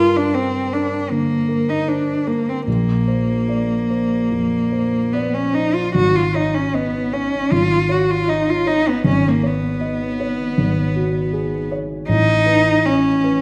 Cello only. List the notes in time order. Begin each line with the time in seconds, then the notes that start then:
Already playing: F4
0.16 D4
0.34 C4
0.73 D4
1.11 A#3
1.69 D#4
1.88 D4
2.28 A#3
2.49 C4
2.69 A#3
5.13 B3
5.34 C#4
5.54 D#4
5.74 F4
5.95 F#4
6.15 F4
6.36 D#4
6.54 C#4
6.75 B3
7.13 C#4
7.52 F4
7.91 F#4
8.11 F4
8.29 D#4
8.50 F4
8.67 D#4
8.88 B3
9.07 C#4
9.28 A#3
9.46 B3
12.09 D#4
12.85 C#4